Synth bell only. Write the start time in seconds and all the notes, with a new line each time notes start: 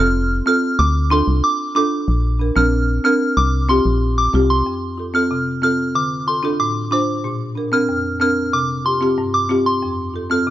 0.00 F6
0.47 F6
0.79 D6
1.11 C6
1.44 D6
1.76 D6
2.56 F6
3.05 F6
3.37 D6
3.69 C6
4.18 D6
4.50 C6
5.15 F6
5.63 F6
5.95 D6
6.28 C6
6.60 D6
6.92 D6
7.73 F6
8.21 F6
8.53 D6
8.86 C6
9.34 D6
9.66 C6
10.31 F6